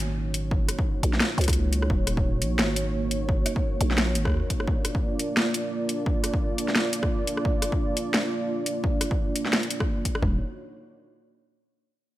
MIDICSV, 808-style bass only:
0, 0, Header, 1, 2, 480
1, 0, Start_track
1, 0, Key_signature, -6, "minor"
1, 0, Tempo, 346821
1, 711, Time_signature, 4, 2, 24, 8
1, 16852, End_track
2, 0, Start_track
2, 0, Title_t, "808-style bass"
2, 0, Program_c, 0, 38
2, 0, Note_on_c, 0, 32, 86
2, 936, Note_off_c, 0, 32, 0
2, 1428, Note_on_c, 0, 34, 87
2, 1653, Note_off_c, 0, 34, 0
2, 1906, Note_on_c, 0, 37, 101
2, 2615, Note_off_c, 0, 37, 0
2, 2629, Note_on_c, 0, 27, 98
2, 3346, Note_on_c, 0, 34, 87
2, 3367, Note_off_c, 0, 27, 0
2, 3587, Note_on_c, 0, 32, 89
2, 3608, Note_off_c, 0, 34, 0
2, 4776, Note_off_c, 0, 32, 0
2, 5270, Note_on_c, 0, 34, 87
2, 5746, Note_on_c, 0, 32, 91
2, 5767, Note_off_c, 0, 34, 0
2, 5888, Note_on_c, 0, 39, 97
2, 5908, Note_off_c, 0, 32, 0
2, 6106, Note_off_c, 0, 39, 0
2, 14150, Note_on_c, 0, 27, 96
2, 14374, Note_off_c, 0, 27, 0
2, 16852, End_track
0, 0, End_of_file